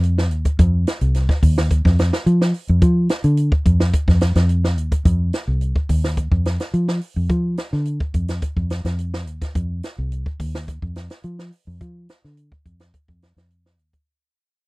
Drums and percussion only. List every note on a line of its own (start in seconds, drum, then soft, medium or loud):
0.03 closed hi-hat medium
0.18 snare medium
0.31 closed hi-hat medium
0.45 kick medium
0.45 closed hi-hat medium
0.59 kick medium
0.59 closed hi-hat medium
0.87 snare medium
0.87 closed hi-hat medium
1.01 closed hi-hat medium
1.15 snare soft
1.15 closed hi-hat medium
1.29 kick medium
1.29 snare soft
1.43 kick medium
1.43 open hi-hat medium
1.58 snare medium
1.71 kick medium
1.71 closed hi-hat medium
1.85 kick medium
1.85 snare soft
1.99 snare medium
1.99 closed hi-hat medium
2.13 snare medium
2.27 closed hi-hat medium
2.42 snare medium
2.54 open hi-hat medium
2.68 closed hi-hat soft
2.82 kick medium
2.82 closed hi-hat medium
3.09 snare medium
3.09 closed hi-hat medium
3.24 closed hi-hat medium
3.37 closed hi-hat medium
3.52 kick medium
3.66 kick medium
3.66 closed hi-hat medium
3.80 snare medium
3.93 kick medium
3.93 closed hi-hat medium
4.08 kick medium
4.08 snare soft
4.21 snare medium
4.21 closed hi-hat medium
4.35 snare medium
4.35 closed hi-hat medium
4.49 closed hi-hat medium
4.64 snare medium
4.78 closed hi-hat medium
4.92 kick medium
4.92 closed hi-hat medium
5.05 kick medium
5.05 closed hi-hat medium
5.33 snare medium
5.33 closed hi-hat soft
5.61 closed hi-hat medium
5.76 kick medium
5.89 kick medium
5.89 open hi-hat medium
6.04 snare medium
6.17 kick medium
6.17 closed hi-hat medium
6.32 kick medium
6.45 snare medium
6.45 closed hi-hat soft
6.60 snare medium
6.60 closed hi-hat soft
6.74 closed hi-hat medium
6.88 snare medium
7.01 open hi-hat medium
7.29 kick medium
7.29 closed hi-hat medium
7.57 snare medium
7.57 closed hi-hat soft
7.72 snare soft
7.85 closed hi-hat medium
8.00 kick medium
8.14 kick medium
8.14 closed hi-hat soft
8.28 snare medium
8.28 closed hi-hat soft
8.42 kick medium
8.42 closed hi-hat medium
8.57 kick medium
8.70 snare medium
8.70 closed hi-hat soft
8.85 snare medium
8.85 closed hi-hat soft
8.99 closed hi-hat medium
9.14 snare medium
9.27 closed hi-hat soft
9.41 kick medium
9.41 snare soft
9.41 closed hi-hat medium
9.55 kick medium
9.55 closed hi-hat medium
9.83 snare medium
9.83 closed hi-hat soft
10.12 closed hi-hat medium
10.26 kick medium
10.40 kick medium
10.40 open hi-hat medium
10.55 snare medium
10.68 kick medium
10.68 closed hi-hat medium
10.82 kick medium
10.96 snare medium
10.96 closed hi-hat soft
11.10 snare medium
11.10 closed hi-hat soft
11.23 closed hi-hat medium
11.39 snare medium
11.52 open hi-hat medium
11.81 kick medium
11.81 closed hi-hat medium
12.09 snare medium
12.09 closed hi-hat soft
12.24 snare soft
12.37 closed hi-hat medium
12.52 kick medium
12.66 kick medium
12.66 closed hi-hat soft
12.80 snare medium
12.80 closed hi-hat soft
12.94 kick medium
12.94 closed hi-hat medium
13.08 kick medium
13.22 snare medium
13.22 closed hi-hat soft
13.37 snare medium
13.37 closed hi-hat soft
13.51 closed hi-hat medium
13.66 snare medium
13.79 closed hi-hat soft
13.93 kick medium
13.93 closed hi-hat soft